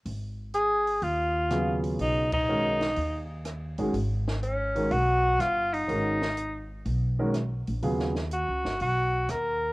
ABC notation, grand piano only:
X:1
M:4/4
L:1/8
Q:"Swing" 1/4=124
K:G#dor
V:1 name="Grand piano"
z6 [C,F,B,EG]2- | [C,F,B,EG] z [D,G,CFA] z4 [D,G,CFG] | z3 [D,G,CFA] z4 | [D,G,CFA] z4 [D,G,CFA] z2 |
[C,F,B,EG] z6 z |]